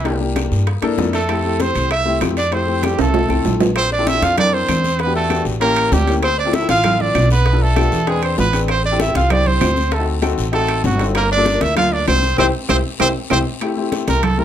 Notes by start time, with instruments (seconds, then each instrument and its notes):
Already playing: upright bass C2, tenor saxophone E3, trumpet E4
0.04 grand piano A#3 D4 E4 G4, high bongo, high timbale, long guiro
0.20 grand piano A#3 D4 E4 G4, high bongo, high conga
0.36 high bongo, high conga, high timbale, short guiro, claves
0.52 upright bass G2, high conga, short guiro
0.67 high bongo, high conga, high timbale, long guiro
0.82 upright bass G2, grand piano A#3 D4 E4 A4, high bongo, high conga, high timbale, claves
0.98 upright bass F2, high bongo, low bongo, high conga, low timbale, short guiro
1.13 tenor saxophone A3, trumpet A4, high bongo, high timbale, short guiro
1.28 grand piano A3 C4 E4 G4, high bongo, high conga, high timbale, long guiro, claves
1.44 grand piano A3 C4 E4 G4, high conga
1.60 tenor saxophone C4, trumpet C5, high bongo, high conga, high timbale, short guiro
1.75 upright bass C2, high conga, high timbale, short guiro
1.90 tenor saxophone E4, trumpet E5, high bongo, high conga, high timbale, long guiro, claves
2.05 grand piano A3 C4 E4 G4, high conga
2.21 upright bass F2, high bongo, low bongo, high conga, high timbale, low timbale, short guiro, claves
2.37 tenor saxophone D4, trumpet D5, high conga, high timbale, short guiro
2.51 grand piano A3 C4 E4 G4, tenor saxophone C4, trumpet C5, high bongo, high conga, high timbale, long guiro
2.67 grand piano A3 C4 E4 G4, high bongo, high conga
2.83 tenor saxophone G3, trumpet G4, high bongo, high conga, high timbale, short guiro, claves
2.99 upright bass C2, tenor saxophone A3, trumpet A4, high timbale, short guiro
3.14 high bongo, high conga, low timbale, long guiro
3.28 upright bass C2, grand piano A3 C4 E4 A4, high conga, claves
3.45 upright bass A#1, low bongo, low conga, low timbale, short guiro
3.60 low bongo, low conga, low timbale, short guiro
3.76 tenor saxophone C4, trumpet C5, high bongo, high conga, high timbale, long guiro, claves
3.91 tenor saxophone D4, trumpet D5, high bongo, high conga
3.98 grand piano C4 D4 E4 A4
4.07 tenor saxophone E4, trumpet E5, high bongo, high conga, high timbale, short guiro
4.13 grand piano C4 D4 E4 A4
4.22 upright bass F2, tenor saxophone F4, trumpet F5, high bongo, high conga, high timbale, short guiro
4.36 grand piano C4 D4 E4 A#4, tenor saxophone D4, trumpet D5, high bongo, high conga, low conga, high timbale, long guiro, claves
4.53 tenor saxophone C4, trumpet C5, high bongo, high conga
4.69 upright bass E2, high bongo, low bongo, high conga, high timbale, short guiro, claves
4.84 high conga, short guiro
4.99 tenor saxophone B3, trumpet B4, high bongo, high conga, high timbale, long guiro
5.06 grand piano B3 D4 F#4 G4
5.15 tenor saxophone A3, trumpet A4, high bongo, high conga
5.29 grand piano B3 D4 F#4 G4, high bongo, high conga, high timbale, short guiro, claves
5.45 upright bass A1, high bongo, high conga, short guiro
5.60 grand piano A#3 C#4 E4 G4, tenor saxophone A#3, trumpet A#4, high bongo, high conga, high timbale, long guiro
5.76 high bongo, high conga, high timbale, claves
5.92 upright bass D2, tenor saxophone G3, trumpet G4, high bongo, low bongo, high conga, low timbale, short guiro
6.07 grand piano A#3 C#4 E4 G4, high timbale, short guiro
6.23 tenor saxophone C4, trumpet C5, high bongo, high conga, high timbale, long guiro, claves
6.38 tenor saxophone D4, trumpet D5, high bongo, high conga
6.45 grand piano C4 E4 F4 A4
6.53 tenor saxophone E4, trumpet E5, high bongo, high conga, high timbale, short guiro
6.60 grand piano C4 E4 F4 A4
6.69 upright bass A1, tenor saxophone F4, trumpet F5, high bongo, high conga, high timbale, short guiro
6.84 grand piano C4 E4 F4 A4, high bongo, high conga, low conga, high timbale, long guiro, claves
7.00 tenor saxophone D4, trumpet D5, high bongo, high conga, low conga
7.15 upright bass B1, high bongo, low bongo, high conga, high timbale, low timbale, short guiro, claves
7.30 tenor saxophone B3, trumpet B4, high conga, short guiro
7.46 high bongo, high conga, high timbale, long guiro
7.52 grand piano B3 D4 F4 A4
7.61 tenor saxophone A3, trumpet A4, high bongo, high conga
7.76 grand piano B3 D4 F4 G4, high bongo, high conga, high timbale, short guiro, claves
7.92 upright bass E2, high bongo, high conga, short guiro
8.07 tenor saxophone G#3, grand piano C4 D4 G#4 B4, trumpet G#4, high bongo, high conga, high timbale, long guiro
8.22 tenor saxophone C4, trumpet C5, high bongo, high conga, high timbale, claves
8.38 upright bass A1, tenor saxophone B3, trumpet B4, high bongo, low bongo, high conga, low timbale, short guiro
8.53 grand piano C4 D4 G#4 B4, high timbale, short guiro
8.68 tenor saxophone C4, trumpet C5, high bongo, high conga, high timbale, long guiro, claves
8.84 tenor saxophone D4, trumpet D5, high bongo, high conga
8.91 grand piano C4 E4 G4 A4
9.00 tenor saxophone E4, trumpet E5, high bongo, high conga, high timbale, short guiro
9.06 grand piano C4 E4 G4 A4
9.15 upright bass C2, tenor saxophone F4, trumpet F5, high bongo, high conga, high timbale, short guiro
9.29 grand piano C4 E4 G4 C5, tenor saxophone D4, trumpet D5, high bongo, high conga, low conga, high timbale, long guiro, claves
9.46 tenor saxophone C4, trumpet C5, high bongo, high conga, low conga
9.61 upright bass D2, high bongo, low bongo, high conga, high timbale, low timbale, short guiro, claves
9.76 high conga, short guiro
9.91 tenor saxophone A3, trumpet A4, high bongo, high conga, high timbale, long guiro
9.98 grand piano C4 D#4 F#4 A4
10.07 high bongo, high conga
10.22 grand piano C4 D#4 F#4 A4, high bongo, high conga, high timbale, short guiro, claves
10.38 upright bass A1, high bongo, high conga, short guiro
10.52 tenor saxophone A3, grand piano C4 D#4 F#4 A4, trumpet A4, high bongo, high conga, high timbale, long guiro
10.69 high bongo, high conga, high timbale, claves
10.84 upright bass G1, tenor saxophone F#3, trumpet F#4, high bongo, low bongo, high conga, short guiro
10.98 grand piano C4 D#4 F#4 A4, high conga, high timbale, short guiro
11.15 tenor saxophone A#3, trumpet A#4, high bongo, high conga, high timbale, long guiro, claves
11.31 tenor saxophone D4, trumpet D5, high bongo, high conga
11.36 grand piano A#3 D4 F4 A4
11.45 high bongo, high conga, high timbale, short guiro
11.52 grand piano A#3 D4 F4 A#4
11.61 upright bass D2, tenor saxophone E4, trumpet E5, high bongo, high conga, high timbale, short guiro
11.75 grand piano A#3 D4 F4 A4, tenor saxophone F4, trumpet F5, high bongo, high conga, low conga, high timbale, long guiro, claves
11.92 tenor saxophone D4, trumpet D5, high bongo, high conga
12.08 upright bass C2, tenor saxophone C4, trumpet C5, high bongo, low bongo, high conga, high timbale, low timbale, short guiro, claves
12.23 high conga, short guiro
12.38 upright bass C2, grand piano C4 E4 G4, tenor saxophone C4, trumpet C5, low bongo, high conga, high timbale, long guiro, claves
12.69 upright bass C2, grand piano C4 E4 G4, tenor saxophone C4, trumpet C5, low bongo, high conga, high timbale, long guiro, claves
13.00 upright bass C2, grand piano C4 E4 G4, tenor saxophone C4, trumpet C5, low bongo, high conga, high timbale, long guiro, claves
13.30 upright bass C2, grand piano C4 E4 G4, tenor saxophone C4, trumpet C5, low bongo, high conga, high timbale, claves
13.61 grand piano A3 C4 E4 G4, high bongo, high conga, high timbale, long guiro, claves
13.76 grand piano A3 C4 E4 G4, high bongo, high conga
13.92 high bongo, high conga, high timbale, short guiro
14.08 upright bass C2, trumpet A#4, high bongo, high conga, high timbale, short guiro
14.23 trumpet A4, high bongo, high conga, low conga, high timbale, long guiro, claves
14.38 grand piano A3 C4 E4 A4, trumpet A#4, high bongo, high conga